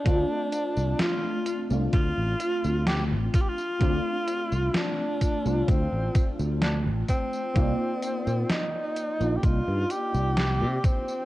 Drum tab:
HH |x-x-x-x-x-x-x-x-|x-x-x-x-x-x-x-x-|x-x-x-x-x-x-x-x-|
TB |x-xxx-xxx-xxx-xx|x-xxx-xxx-xxx-xx|x-xxx-xxx-xxx-xx|
SD |----o-------o---|----o-------o---|----o-------o---|
BD |o-------o-----o-|o-----o-o-o---o-|o-------o-----o-|